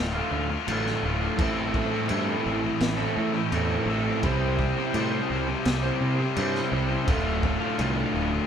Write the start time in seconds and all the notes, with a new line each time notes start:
Already playing: D1 A2 D3 A3 F4
0.15 D3 A3 F4
0.31 D2 A2 D3 A3 F4
0.49 D3 A3 F4, muted overdriven electric guitar stroke
0.67 A1 D2 A2 D3 A3 F4, crash
0.86 snare
1.03 D1 A2 D3 A3 F4
1.21 D3 A3 F4
1.38 A1 A2 E3 A3 C4 E4 A4, kick, crash
1.74 A3 C4 E4 A4, kick
1.91 A3 C4 E4 A4
2.09 G2 A2 E3 A3 C4 E4 A4, crash
2.27 A3 C4 E4 A4
2.45 A1 A3 C4 E4 A4
2.62 A3 C4 E4 A4, muted overdriven electric guitar stroke
2.80 A1, snare, crash
2.97 A3 C4 E4 A4
3.16 A2 A3 C4 E4 A4
3.33 A3 C4 E4 A4, muted overdriven electric guitar stroke
3.51 E2 A2 E3 A3 C4 E4 A4, crash
3.86 A1 A3 C4 E4
3.90 A4
4.05 A3 C4 E4 A4
4.22 C2 C3 G3 C4 E4 G4 C5, kick, crash
4.57 C4 E4 G4 C5, kick
4.76 C4 E4 G4 C5
4.94 A2 C3 G3 C4 E4 G4 C5, crash
5.12 C4 E4 G4 C5
5.30 C2 C4 E4 G4 C5
5.47 C4 E4 G4 C5, muted overdriven electric guitar stroke
5.65 C2, snare, crash
5.83 C4 E4 G4 C5
6.01 C3 C4 E4 G4 C5
6.19 C4 E4 G4 C5, muted overdriven electric guitar stroke
6.36 G2 C3 G3 C4 E4 G4 C5, crash
6.55 snare
6.72 C2 C4 E4 G4 C5
6.89 C4 E4 G4 C5
7.07 D1 D2 A2 D3 A3 F4, kick, crash
7.43 A2 D3 A3 F4, kick
7.60 D3 A3 F4
7.78 C2 D2 A2 D3 A3 F4, crash
7.95 D3 A3 F4
8.13 D1 A2 D3 A3 F4
8.31 D3 A3 F4, muted overdriven electric guitar stroke